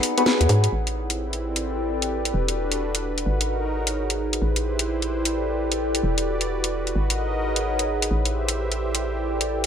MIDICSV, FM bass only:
0, 0, Header, 1, 2, 480
1, 0, Start_track
1, 0, Tempo, 461538
1, 753, Time_signature, 4, 2, 24, 8
1, 10051, End_track
2, 0, Start_track
2, 0, Title_t, "FM bass"
2, 0, Program_c, 0, 39
2, 424, Note_on_c, 0, 39, 75
2, 491, Note_off_c, 0, 39, 0
2, 513, Note_on_c, 0, 44, 105
2, 708, Note_off_c, 0, 44, 0
2, 752, Note_on_c, 0, 33, 83
2, 2415, Note_off_c, 0, 33, 0
2, 2433, Note_on_c, 0, 28, 89
2, 3376, Note_off_c, 0, 28, 0
2, 3393, Note_on_c, 0, 32, 86
2, 4575, Note_off_c, 0, 32, 0
2, 4594, Note_on_c, 0, 33, 80
2, 6256, Note_off_c, 0, 33, 0
2, 6274, Note_on_c, 0, 28, 86
2, 7216, Note_off_c, 0, 28, 0
2, 7234, Note_on_c, 0, 32, 84
2, 8416, Note_off_c, 0, 32, 0
2, 8433, Note_on_c, 0, 33, 82
2, 10051, Note_off_c, 0, 33, 0
2, 10051, End_track
0, 0, End_of_file